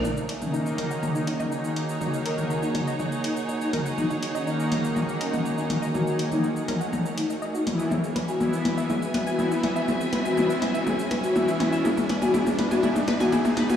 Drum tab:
HH |--o---o---o---o-|--o---o---o---o-|--o---o---o---o-|--o---o---o---o-|
SH |xx-xxx-xxx-xxx-x|xx-xxx-xxx-xxx-x|xx-xxx-xxx-xxx-x|xx-xxx-xxx-xxx-x|
T2 |o--o--o-o--o----|o--o--o-o-----o-|o-----o-o--o--o-|o--o--o-o-----o-|

HH |--o---o---o---o-|--o---o---o---o-|--o---o---o---o-|
SH |xx-xxx-xxx-xxx-x|xx-xxx-xxx-xxx-x|xx-xxx-xxx-xxx-x|
T2 |o-o-o-o-o-o-o-o-|o-o-o-o-o-o-o-o-|oooooooooooooooo|